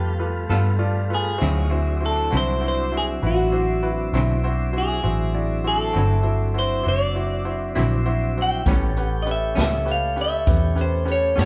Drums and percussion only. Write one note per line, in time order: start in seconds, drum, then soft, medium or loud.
8.66 kick medium
8.66 closed hi-hat medium
8.96 closed hi-hat medium
9.26 closed hi-hat medium
9.57 snare medium
9.57 closed hi-hat medium
9.88 closed hi-hat soft
10.17 closed hi-hat soft
10.47 kick medium
10.47 closed hi-hat medium
10.77 closed hi-hat soft
11.07 closed hi-hat medium
11.37 snare medium
11.37 closed hi-hat medium